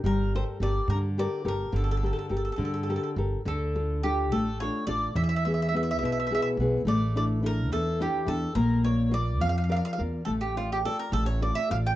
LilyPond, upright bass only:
\new Staff \with { instrumentName = "Upright bass" } { \clef bass \time 6/8 \key g \minor \tempo 4. = 70 g,,4 g,,8 g,4 g,,8 | g,,4 g,,8 g,4 g,,8 | \key d \minor d,4. a,,4 a,,8 | e,4. b,,4 b,,8 |
a,,4. e,4 e,8 | bes,,4. f,4 e,8 | a,,4. a,,4 a,,8 | }